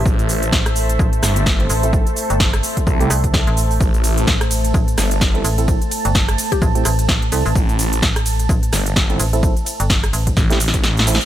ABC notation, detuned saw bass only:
X:1
M:4/4
L:1/16
Q:"Swing 16ths" 1/4=128
K:Am
V:1 name="Detuned saw bass" clef=bass
A,,,4 z6 G,,,4 z2 | z8 C,,2 z6 | A,,,4 z6 G,,,4 z2 | z16 |
A,,,4 z6 G,,,4 z2 | z8 A,,,3 A,,,4 z |]